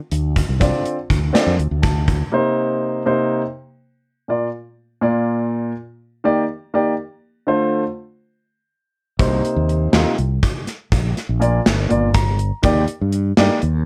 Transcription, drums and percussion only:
0.11 closed hi-hat medium
0.36 kick medium
0.36 closed hi-hat medium
0.61 kick loud
0.61 closed hi-hat medium
0.85 closed hi-hat medium
1.10 kick medium
1.10 closed hi-hat medium
1.35 snare medium
1.35 closed hi-hat medium
1.59 closed hi-hat soft
1.83 kick loud
1.83 snare soft
1.83 closed hi-hat medium
2.08 kick medium
2.08 closed hi-hat medium
9.20 kick loud
9.20 closed hi-hat medium
9.45 closed hi-hat medium
9.69 closed hi-hat medium
9.93 snare loud
9.93 closed hi-hat medium
10.18 closed hi-hat medium
10.43 kick loud
10.43 closed hi-hat medium
10.67 snare soft
10.67 closed hi-hat medium
10.92 kick loud
10.92 closed hi-hat medium
11.17 snare soft
11.17 closed hi-hat medium
11.42 closed hi-hat medium
11.66 snare loud
11.66 closed hi-hat medium
11.90 closed hi-hat medium
12.14 kick loud
12.14 closed hi-hat medium
12.39 closed hi-hat medium
12.63 kick loud
12.63 closed hi-hat medium
12.88 closed hi-hat medium
13.12 closed hi-hat medium
13.37 snare loud
13.37 closed hi-hat medium
13.62 closed hi-hat medium

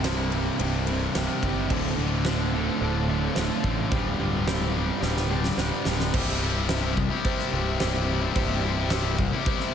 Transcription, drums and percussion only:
0.04 snare loud
0.04 ride loud
0.32 ride medium
0.59 ride medium
0.87 ride medium
1.15 snare loud
1.15 ride medium
1.43 kick medium
1.43 ride medium
1.70 kick loud
1.70 crash loud
2.25 snare loud
3.36 snare loud
3.64 kick medium
3.92 kick loud
4.48 snare loud
5.02 snare medium
5.17 snare medium
5.44 snare medium
5.58 snare medium
5.85 snare loud
6.00 snare loud
6.14 kick loud
6.14 crash loud
6.14 crash medium
6.69 snare loud
6.69 crash medium
6.97 kick medium
7.25 kick loud
7.25 crash medium
7.39 snare soft
7.80 snare loud
7.80 crash medium
8.36 kick loud
8.36 crash medium
8.90 snare loud
8.90 crash medium
9.19 kick medium
9.46 kick loud
9.46 crash medium
9.60 snare soft

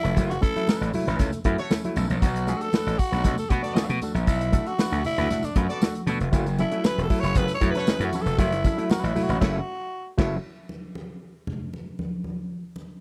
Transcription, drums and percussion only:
0.05 closed hi-hat medium
0.05 tambourine soft
0.16 kick medium
0.16 closed hi-hat medium
0.16 tambourine medium
0.16 muted conga soft
0.31 closed hi-hat medium
0.31 tambourine soft
0.42 kick loud
0.42 closed hi-hat medium
0.42 tambourine soft
0.42 muted conga medium
0.56 closed hi-hat medium
0.67 snare loud
0.67 tambourine medium
0.67 high conga medium
0.83 closed hi-hat medium
0.93 open hi-hat medium
0.93 tambourine medium
0.93 low conga medium
1.07 snare soft
1.07 closed hi-hat soft
1.07 tambourine soft
1.19 kick medium
1.19 snare soft
1.19 closed hi-hat medium
1.19 tambourine medium
1.19 muted conga medium
1.19 low conga medium
1.32 closed hi-hat medium
1.32 tambourine medium
1.44 kick medium
1.44 closed hi-hat medium
1.44 muted conga soft
1.58 closed hi-hat soft
1.71 snare loud
1.71 tambourine medium
1.71 high conga medium
1.84 closed hi-hat medium
1.96 closed hi-hat medium
1.96 tambourine medium
1.96 high conga medium
2.10 closed hi-hat soft
2.10 tambourine soft
2.22 kick medium
2.22 closed hi-hat medium
2.22 tambourine medium
2.22 muted conga soft
2.36 closed hi-hat medium
2.47 closed hi-hat medium
2.47 tambourine soft
2.47 muted conga medium
2.61 closed hi-hat soft
2.73 snare loud
2.73 tambourine medium
2.73 high conga medium
2.88 closed hi-hat medium
2.99 kick medium
2.99 open hi-hat medium
2.99 tambourine medium
3.13 closed hi-hat soft
3.13 tambourine soft
3.24 kick medium
3.24 snare soft
3.24 closed hi-hat medium
3.24 tambourine soft
3.24 muted conga medium
3.24 low conga medium
3.38 closed hi-hat medium
3.38 tambourine medium
3.50 kick medium
3.50 closed hi-hat medium
3.50 muted conga soft
3.50 low conga medium
3.64 closed hi-hat medium
3.64 tambourine soft
3.76 snare loud
3.76 tambourine medium
3.76 high conga medium
3.90 closed hi-hat medium
4.01 closed hi-hat medium
4.01 tambourine medium
4.01 high conga medium
4.16 closed hi-hat medium
4.16 tambourine soft
4.27 kick medium
4.27 closed hi-hat medium
4.27 tambourine medium
4.27 muted conga soft
4.41 closed hi-hat medium
4.53 kick loud
4.53 closed hi-hat medium
4.53 tambourine soft
4.53 muted conga medium
4.66 closed hi-hat soft
4.79 snare loud
4.79 tambourine loud
4.79 high conga medium
4.93 closed hi-hat medium
5.04 open hi-hat medium
5.04 tambourine soft
5.04 low conga medium
5.18 snare soft
5.18 closed hi-hat soft
5.18 tambourine soft
5.30 snare soft
5.30 closed hi-hat medium
5.30 tambourine medium
5.30 muted conga medium
5.30 low conga medium
5.43 closed hi-hat soft
5.43 tambourine medium
5.56 kick medium
5.56 closed hi-hat medium
5.56 muted conga medium
5.69 closed hi-hat medium
5.69 tambourine soft
5.82 snare loud
5.82 tambourine loud
5.82 high conga medium
5.95 closed hi-hat medium
6.07 closed hi-hat medium
6.07 tambourine medium
6.07 high conga medium
6.21 closed hi-hat medium
6.33 kick loud
6.33 closed hi-hat medium
6.33 tambourine medium
6.33 muted conga soft
6.46 closed hi-hat medium
6.46 tambourine soft
6.59 closed hi-hat medium
6.59 tambourine soft
6.59 muted conga medium
6.71 closed hi-hat soft
6.84 snare loud
6.84 tambourine medium
6.84 high conga medium
6.99 closed hi-hat medium
7.10 kick medium
7.10 open hi-hat medium
7.10 tambourine soft
7.23 snare soft
7.23 closed hi-hat medium
7.23 tambourine soft
7.35 kick loud
7.35 closed hi-hat medium
7.35 tambourine medium
7.35 muted conga medium
7.35 low conga medium
7.48 closed hi-hat medium
7.48 tambourine medium
7.61 kick medium
7.61 closed hi-hat medium
7.61 muted conga medium
7.61 low conga medium
7.75 closed hi-hat medium
7.75 tambourine soft
7.87 snare loud
7.87 tambourine medium
7.87 high conga medium
8.01 closed hi-hat medium
8.12 closed hi-hat medium
8.12 tambourine medium
8.12 high conga medium
8.26 closed hi-hat medium
8.26 tambourine soft
8.38 kick loud
8.38 closed hi-hat medium
8.38 tambourine medium
8.38 muted conga soft
8.52 closed hi-hat medium
8.52 tambourine soft
8.64 kick medium
8.64 closed hi-hat medium
8.64 tambourine soft
8.64 muted conga medium
8.79 closed hi-hat soft
8.90 snare loud
8.90 tambourine medium
8.90 high conga medium
9.05 closed hi-hat medium
9.16 open hi-hat medium
9.16 tambourine soft
9.16 low conga medium
9.29 closed hi-hat medium
9.29 tambourine soft
9.42 kick loud
9.42 snare loud
9.42 crash medium
10.19 kick loud
10.19 snare loud
10.19 crash medium
10.44 muted conga soft
10.69 muted conga medium
10.95 high conga medium
11.47 muted conga soft
11.47 low conga medium
11.73 muted conga soft
11.99 high conga medium
12.24 high conga medium
12.76 muted conga soft

